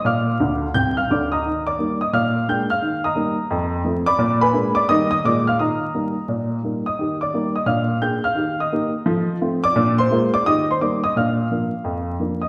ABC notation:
X:1
M:4/4
L:1/8
Q:"Swing" 1/4=173
K:Eb
V:1 name="Upright piano"
[fd'f']4 [gg'] [ff'] [dd'] [ebe']- | [ebe'] [dd']2 [ee'] [fd'f']2 [gg'] [ff']- | [ff'] [ebe']4- [ebe'] z [d_c'd']- | [d_c'd'] [_cac']2 [dd'] [ee'] [ee'] [dd'] [ff'] |
[ebe']6 z [ee']- | [ee'] [dd']2 [ee'] [ff']2 [gg'] [ff']- | [ff'] [ee']4- [ee'] z [dd']- | [dd'] [cc']2 [dd'] [ee'] [cc'] [dd'] [ee'] |
[ff']6- [ff'] [ee'] |]
V:2 name="Upright piano"
B,,2 [D,,D,]2 [C,,C,]2 [D,,D,]2 | E,2 [G,B,E]2 B,,2 [A,B,D]2 | E,2 [G,B,E]2 F,,2 [F,=A,C]2 | B,,2 [A,B,D]2 [E,G,B,E]2 [B,,A,B,F]2 |
E,2 [G,B,E]2 B,,2 [G,B,E]2 | [E,G]2 [G,B,E]2 [B,,D]2 [B,DA]2 | [E,G]2 [B,EG]2 [F,=A]2 [=A,CF]2 | [B,,D]2 [A,B,F]2 [E,G]2 [G,B,E]2 |
[B,,D]2 [F,B,D]2 F,,2 [F,B,D]2 |]